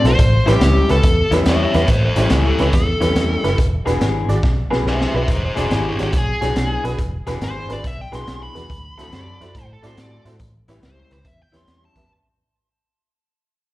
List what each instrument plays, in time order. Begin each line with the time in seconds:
0.04 fingered electric bass B1, honky-tonk piano E4 F#4 A4 C5, lead electric guitar C5, snare, closed hi-hat
0.19 fingered electric bass A1, kick, closed hi-hat
0.46 fingered electric bass A1, clean electric guitar A2 G3 C#4 E4, honky-tonk piano C#4 E4 G4 B4, lead electric guitar G4, snare, closed hi-hat
0.61 fingered electric bass C#2, clean electric guitar A2 G3 C#4 E4, snare, closed hi-hat
0.89 fingered electric bass C#2, honky-tonk piano C#4 E4 G4 B4, lead electric guitar A4, snare, closed hi-hat
1.03 fingered electric bass E2, kick, closed hi-hat
1.31 fingered electric bass E2, clean electric guitar A2 G3 C#4 E4, honky-tonk piano C#4 E4 G4 B4, snare, closed hi-hat
1.45 fingered electric bass E2, clean electric guitar A2 G3 C#4 E4, lead electric guitar C#5 E5, snare, closed hi-hat
1.64 lead electric guitar C#5 E5
1.74 fingered electric bass E2, honky-tonk piano C#4 E4 G4 B4, lead electric guitar C#5 E5, snare, closed hi-hat
1.87 fingered electric bass A1, lead electric guitar A4 C5, kick, snare, closed hi-hat
2.04 lead electric guitar A4 C5
2.16 fingered electric bass A1, clean electric guitar A2 G3 C#4 E4, honky-tonk piano C#4 E4 G4 C#5, lead electric guitar A4 C5, snare, closed hi-hat
2.30 fingered electric bass C#2, clean electric guitar A2 G3 C#4 E4, lead electric guitar C#4 A4, snare, closed hi-hat
2.46 lead electric guitar C#4 A4
2.58 fingered electric bass C#2, honky-tonk piano C#4 E4 G4 B4, lead electric guitar C#4 A4, snare, closed hi-hat
2.73 fingered electric bass E2, lead electric guitar A4, kick, snare, closed hi-hat
3.00 fingered electric bass E2, clean electric guitar A2 G3 C#4 E4, honky-tonk piano C#4 E4 G4 B4, snare, closed hi-hat
3.15 fingered electric bass E2, clean electric guitar A2 G3 C#4 E4, snare, closed hi-hat
3.44 fingered electric bass F#1, honky-tonk piano C#4 E4 G4 B4, snare, closed hi-hat
3.58 fingered electric bass E1, kick, closed hi-hat
3.85 fingered electric bass E1, clean electric guitar E3 B3 D4 G#4, honky-tonk piano D4 F#4 G#4 B4, snare, closed hi-hat
4.00 fingered electric bass G#1, clean electric guitar E3 B3 D4 G#4, snare, closed hi-hat
4.28 fingered electric bass G#1, honky-tonk piano D4 F#4 G#4 D5, snare, closed hi-hat
4.43 fingered electric bass B1, kick, snare
4.70 fingered electric bass B1, clean electric guitar E3 B3 D4 G#4, honky-tonk piano D4 F#4 G#4 B4, snare
4.85 fingered electric bass B1, clean electric guitar E3 B3 D4 G#4, lead electric guitar C5 E5, snare
5.01 lead electric guitar C5 E5, snare
5.13 fingered electric bass B1, honky-tonk piano D4 F#4 G#4 B4, lead electric guitar C5 E5
5.28 fingered electric bass E1, lead electric guitar G#4 C5, kick, closed hi-hat
5.45 lead electric guitar G#4 C5
5.56 fingered electric bass E1, clean electric guitar E3 B3 D4 G#4, honky-tonk piano D4 F#4 G#4 D5, lead electric guitar G#4 C5, snare, closed hi-hat
5.70 fingered electric bass G#1, clean electric guitar E3 B3 D4 G#4, lead electric guitar E4 G4, snare, closed hi-hat
5.88 lead electric guitar E4 G4
5.99 fingered electric bass G#1, honky-tonk piano D4 F#4 G#4 C#5, lead electric guitar E4 G4, snare, closed hi-hat
6.13 fingered electric bass B1, kick, closed hi-hat
6.17 lead electric guitar G#4
6.41 fingered electric bass B1, clean electric guitar E3 B3 D4 G#4, honky-tonk piano D4 F#4 G#4 C#5, snare, closed hi-hat
6.55 fingered electric bass B1, clean electric guitar E3 B3 D4 G#4, snare, closed hi-hat
6.84 fingered electric bass B1, honky-tonk piano D4 F#4 G#4 B4, snare, closed hi-hat
6.98 fingered electric bass E1, kick, closed hi-hat
7.27 fingered electric bass E1, clean electric guitar E3 B3 D4 G#4, honky-tonk piano D4 F#4 G#4 B4, snare, closed hi-hat
7.41 fingered electric bass G#1, clean electric guitar E3 B3 D4 G#4, lead electric guitar C5, snare, closed hi-hat
7.69 fingered electric bass G#1, honky-tonk piano D4 F#4 G#4 B4, lead electric guitar D5, snare, closed hi-hat
7.84 fingered electric bass B1, lead electric guitar E5, kick, snare, closed hi-hat
8.01 lead electric guitar G5
8.12 fingered electric bass B1, clean electric guitar E3 B3 D4 G#4, honky-tonk piano D4 F#4 G#4 B4, lead electric guitar C6, snare, closed hi-hat
8.26 fingered electric bass B1, clean electric guitar E3 B3 D4 G#4, snare, closed hi-hat
8.43 lead electric guitar B5
8.55 fingered electric bass E2, honky-tonk piano D4 F#4 G#4 B4, snare, closed hi-hat
8.70 fingered electric bass D2, kick, closed hi-hat
8.98 fingered electric bass D2, clean electric guitar D3 C4 F#4 A4, honky-tonk piano E4 F#4 A4 C5, snare, closed hi-hat
9.12 fingered electric bass F#2, clean electric guitar D3 C4 F#4 A4, electric slide guitar D5, snare, closed hi-hat
9.40 fingered electric bass F#2, honky-tonk piano E4 F#4 A4 C5, snare, closed hi-hat
9.55 fingered electric bass A2, kick, snare, closed hi-hat
9.59 electric slide guitar C5
9.73 electric slide guitar A4
9.82 fingered electric bass A2, clean electric guitar D3 C4 F#4 A4, honky-tonk piano E4 F#4 A4 D5, snare, closed hi-hat
9.87 electric slide guitar C5
9.96 fingered electric bass A2, clean electric guitar D3 C4 F#4 A4, snare, closed hi-hat
10.01 electric slide guitar D5
10.25 fingered electric bass A2, honky-tonk piano E4 F#4 A4 C5, snare, closed hi-hat
10.39 fingered electric bass A1, kick, closed hi-hat
10.68 fingered electric bass A1, clean electric guitar A2 G3 C#4 E4, honky-tonk piano E4 G4 B4 C#5, snare, closed hi-hat
10.82 fingered electric bass C#2, clean electric guitar A2 G3 C#4 E4, lead electric guitar C5, snare, closed hi-hat
11.11 fingered electric bass C#2, honky-tonk piano E4 G4 B4 E5, lead electric guitar C5, snare, closed hi-hat
11.25 fingered electric bass E2, lead electric guitar E5, kick, closed hi-hat
11.42 lead electric guitar G5
11.52 fingered electric bass E2, clean electric guitar A2 G3 C#4 E4, honky-tonk piano E4 G4 B4 C#5, snare, closed hi-hat
11.57 lead electric guitar C6
11.67 fingered electric bass E2, clean electric guitar A2 G3 C#4 E4, snare, closed hi-hat
11.85 lead electric guitar A5
11.96 fingered electric bass E2, honky-tonk piano E4 G4 B4 E5, kick, snare, closed hi-hat